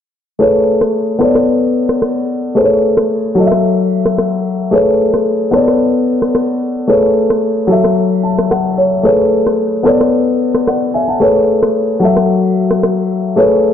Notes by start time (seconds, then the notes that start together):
0.39 A3 G#4 B4 C#5, shaker
0.54 shaker
0.67 shaker
0.81 cross-stick, shaker
0.94 shaker
1.08 shaker
1.19 B3 A4 C#5, cross-stick, shaker
1.24 D5
1.35 cross-stick, shaker
1.48 shaker
1.62 shaker
1.75 shaker
1.89 cross-stick, shaker
2.02 cross-stick, shaker
2.16 shaker
2.29 shaker
2.43 shaker
2.55 A3 G#4 B4 C5, shaker
2.64 C#5
2.71 shaker
2.83 shaker
2.97 cross-stick, shaker
3.10 shaker
3.24 shaker
3.35 F#3 F#4 A4, shaker
3.40 D#5
3.46 E5
3.52 cross-stick, shaker
3.64 shaker
3.79 shaker
3.92 shaker
4.05 cross-stick, shaker
4.18 cross-stick, shaker
4.32 shaker
4.46 shaker
4.60 shaker
4.71 A3 G#4 B4 C#5, shaker
4.87 shaker
4.99 shaker
5.13 cross-stick, shaker
5.26 shaker
5.40 shaker
5.51 B3 A4 C#5, cross-stick, shaker
5.56 D5
5.68 cross-stick, shaker
5.80 shaker
5.95 shaker
6.08 shaker
6.22 cross-stick, shaker
6.35 cross-stick, shaker
6.49 shaker
6.62 shaker
6.76 shaker
6.88 A3 G#4 B4 C#5, shaker
7.03 shaker
7.16 shaker
7.30 cross-stick, shaker
7.43 shaker
7.57 shaker
7.67 F#3 F#4 A4, shaker
7.72 E5
7.84 cross-stick, shaker
7.97 shaker
8.12 shaker
8.23 A5, shaker
8.38 cross-stick, shaker
8.51 F#5, cross-stick, shaker
8.65 shaker
8.78 C#5, shaker
8.92 shaker
9.03 A3 G#4 B4 C#5, shaker
9.20 shaker
9.32 shaker
9.46 cross-stick, shaker
9.59 shaker
9.73 shaker
9.83 B3 A4 C#5, cross-stick, shaker
9.88 D5
10.01 cross-stick, shaker
10.13 shaker
10.28 shaker
10.41 shaker
10.54 cross-stick, shaker
10.67 D5 F#5, cross-stick, shaker
10.81 shaker
10.94 E5 G#5, shaker
11.08 F#5 A5, shaker
11.20 A3 G#4 B4 C#5, shaker
11.36 shaker
11.48 shaker
11.62 cross-stick, shaker
11.75 shaker
11.89 shaker
12.00 F#3 F#4 A4, shaker
12.05 E5
12.17 cross-stick, shaker
12.29 shaker
12.44 shaker
12.57 shaker
12.70 cross-stick, shaker
12.83 cross-stick, shaker
12.97 shaker
13.10 shaker
13.25 shaker
13.36 A3 G#4 B4 C#5, shaker
13.52 shaker
13.64 shaker